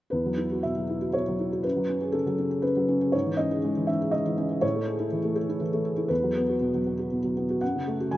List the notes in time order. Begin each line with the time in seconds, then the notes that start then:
0.10 E2 B4
0.26 F#3
0.38 E4
0.52 F#4
0.63 B2 E5
0.77 F#3
0.89 E4
1.02 F#4
1.13 B2 C#5
1.28 F#3
1.40 E4
1.52 F#4
1.63 F#2 B4
1.76 F#3
1.89 C#4
2.01 G#4
2.12 C#3 A4
2.26 F#3
2.39 C#4
2.51 G#4
2.62 C#3 B4
2.77 F#3
2.88 C#4
3.01 G#4
3.12 G#2 C#5
3.26 E3
3.37 C#4 D#5
3.51 G#4
3.64 G#3
3.76 E3
3.87 C#4 E5
4.01 G#4
4.11 G#3 D#5
4.26 E3
4.38 C#4
4.51 G#4
4.61 A2 C#5
4.75 A3
4.87 G#4
5.00 E4
5.12 E3
5.24 A3
5.35 G#4 A4
5.49 E4
5.61 E3
5.73 A3
5.85 G#4
5.97 E4
6.08 E2 B4
6.23 F#3
6.36 B3
6.49 F#4
6.61 B2
6.74 F#3
6.86 B3
6.99 F#4
7.12 B2
7.24 F#3
7.37 B3
7.50 F#4
7.61 F#2 F#5
7.75 C#3
7.87 A3
8.00 F#4
8.11 F#3 G#5